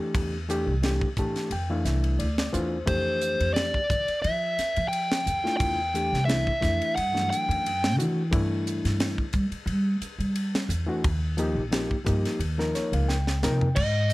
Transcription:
Already playing: E3 A3 D4 G4
0.15 E2, kick, ride
0.49 E3 A3 D4 G4, hi-hat pedal, ride
0.67 C2
0.83 E3 A3 D4 G4, snare, ride
1.01 muted upright bass stroke, kick
1.17 A2 E3 A3 D4 G4 A5, kick, hi-hat pedal, ride
1.36 snare, ride
1.50 F2 G5, ride
1.70 E3 A3 D4 E4 F5
1.85 C2 E5, snare, hi-hat pedal, ride
2.04 ride
2.19 D2 D5, ride
2.38 D5, snare
2.53 E2 E3 A3 D4 F4 C5, hi-hat pedal, ride
2.86 F2 E3 A3 D4 G4 C5, kick, ride
3.21 hi-hat pedal, ride
3.40 F2, ride
3.54 D5, snare, ride
3.74 kick
3.90 F3, kick, hi-hat pedal, ride
4.08 muted upright bass stroke, ride
4.22 F3 E5, ride
4.58 muted upright bass stroke, snare, hi-hat pedal, ride
4.76 F3, ride
4.88 G5
4.93 ride
5.12 snare
5.26 F2, hi-hat pedal, ride
5.44 A3 D4 E4 F4, snare
5.57 E2 G5, kick, ride
5.94 E3 A3 D4 G4, hi-hat pedal, ride
6.13 C2, snare
6.25 E3 A3 D4 E4 E5, ride
6.30 snare
6.47 muted upright bass stroke, kick
6.61 F2 E3 A3 D4 E4, kick, snare, hi-hat pedal, ride
6.82 ride
6.96 G2 F#5, ride
7.13 E3 F#3 A3 D4, snare
7.30 G5, hi-hat pedal, ride
7.48 F#2, ride
7.66 ride
7.84 snare
7.98 E3 A3 D4 F#4, hi-hat pedal, ride
8.31 G2 E3 A3 D4 E4, kick, ride
8.67 hi-hat pedal, ride
8.85 G2, snare, ride
9.00 snare, ride
9.18 kick
9.33 G3, kick, hi-hat pedal, ride
9.51 muted upright bass stroke, ride
9.66 G3, ride
10.01 muted upright bass stroke, hi-hat pedal, ride
10.19 G3, ride
10.36 ride
10.55 snare
10.69 E2, hi-hat pedal, ride
10.86 E3 A3 D4 F#4
11.04 D#2, kick, ride
11.37 F3 A#3 D#4 G4, hi-hat pedal, ride
11.55 A#1
11.71 F3 A#3 D#4 G4, snare, ride
11.91 muted upright bass stroke, kick
12.05 G2 F3 A#3 D#4 G4, kick, hi-hat pedal, ride
12.25 snare, ride
12.39 D#2, ride
12.58 F3 A#3 D#4 A#4, snare
12.75 C#5, snare, hi-hat pedal, ride
12.92 C#2 F5, ride
13.09 G5, snare
13.27 snare
13.43 C3 F3 A#3 D#4 A#4 G5, snare, hi-hat pedal
13.61 floor tom
13.76 G#2 D#5, kick, crash
14.10 hi-hat pedal, ride

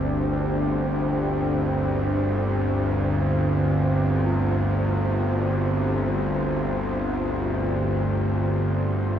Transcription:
Already playing: G1 D2 C4 D4 G4 C5
4.26 G3 F4
6.44 F4

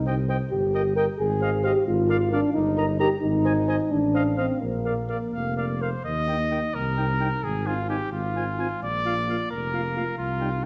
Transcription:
Already playing: C2
0.06 C5 D#5 G5
0.29 C5 D#5 G5
0.51 G1 G4
0.74 A#4 D#5 G5
0.96 A#4 D#5 G5
1.19 G#1 G#4
1.42 C5 D#5 F5
1.64 G4 C5 D#5 F5
1.87 G#1 F4
2.09 A#4 D5 F5
2.31 D4 A#4 D5 F5
2.54 G1 D#4
2.77 A#4 D#5 A#5
2.99 G4 A#4 D#5 A#5
3.22 G#1 D#4
3.45 C5 D#5 G#5
3.68 C5 D#5 G#5
3.91 A1 D4
4.14 C5 D#5 F5
4.37 C4 C5 D#5 F5
4.62 A#1 A#3
4.85 A#4 D5 F5
5.08 A#4 D5 F5
5.33 F1 F5
5.57 A#4 D5 F5
5.81 A#4 C5 F5
6.04 D#2 D#5
6.28 A#3 D#4 G5
6.51 A#3 D#4 G5
6.74 C2 A#4
6.97 C4 D#4 G5
7.20 C4 D#4 G5
7.44 G#1 G#4
7.66 C4 D#4 F4 G#5
7.88 C4 D#4 G4 G#5
8.12 G#1 F4
8.35 C4 F4 G#5
8.58 C4 F4 G#5
8.82 A#1 D5
9.05 A#3 F4 F5
9.28 A#3 F4 F5
9.51 F1 A#4
9.73 A#3 F4 F5
9.96 A#3 F4 F5
10.18 C2 F4
10.41 G3 D#4 G5

